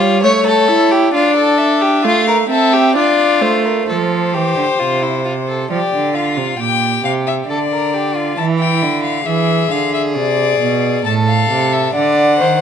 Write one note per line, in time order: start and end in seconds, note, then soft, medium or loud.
0.00 0.25 G3 medium
0.00 0.21 F4 loud
0.00 1.13 C#5 medium
0.23 0.70 A3 medium
0.23 0.45 C#5 medium
0.47 0.93 A4 medium
0.69 1.13 E4 medium
0.91 1.13 G4 medium
1.14 2.06 D4 medium
1.14 1.36 F4 medium
1.14 1.60 D5 medium
1.36 1.83 A4 medium
1.58 2.05 E5 medium
1.81 2.04 G4 medium
2.03 2.49 A3 medium
2.03 2.27 F4 medium
2.03 2.49 F5 medium
2.28 2.36 A#4 medium
2.49 2.97 C4 medium
2.49 2.74 A4 medium
2.49 2.95 E5 medium
2.73 2.96 G4 medium
2.95 3.43 D4 medium
2.95 3.87 F4 medium
2.95 3.43 D5 medium
3.41 3.88 A3 medium
3.41 3.66 C5 medium
3.65 3.87 A#4 medium
3.88 4.36 F3 medium
3.88 4.35 A4 medium
3.88 5.66 C5 medium
4.34 4.56 E3 medium
4.34 4.81 G4 medium
4.57 4.65 D3 medium
4.79 5.68 C3 medium
4.79 5.04 F4 medium
5.02 5.24 E4 medium
5.25 5.33 F4 medium
5.48 5.70 A4 medium
5.70 5.78 F3 medium
5.70 6.15 G4 medium
5.70 6.16 D5 medium
5.92 6.39 D3 medium
6.15 6.62 F4 medium
6.15 6.59 F5 medium
6.37 6.59 C3 medium
6.60 7.04 A#2 medium
6.60 7.49 G4 medium
6.60 7.04 G5 medium
7.05 7.49 C3 medium
7.05 7.13 F5 medium
7.27 7.35 E5 medium
7.48 8.37 D3 medium
7.48 7.58 A4 medium
7.48 8.36 D5 medium
7.72 7.95 A#4 medium
7.94 8.17 G4 medium
8.16 8.40 F4 medium
8.37 8.84 E3 medium
8.37 9.26 E4 medium
8.37 8.45 A5 medium
8.59 9.03 G5 medium
8.82 9.26 D3 medium
9.04 9.27 F5 medium
9.26 9.71 E3 medium
9.26 11.02 G#4 medium
9.26 9.72 E5 medium
9.71 10.18 D3 medium
9.71 9.93 F5 medium
9.94 10.02 E5 medium
10.16 10.60 C3 medium
10.16 11.04 D5 medium
10.61 11.05 B2 medium
11.05 11.50 A2 medium
11.05 11.93 A4 medium
11.05 11.13 A5 medium
11.28 11.74 F5 medium
11.50 11.94 C3 medium
11.72 11.95 E5 medium
11.93 12.42 D3 medium
11.93 12.38 D5 medium
11.93 12.61 F#5 medium
12.39 12.61 D#3 medium
12.39 12.61 C5 medium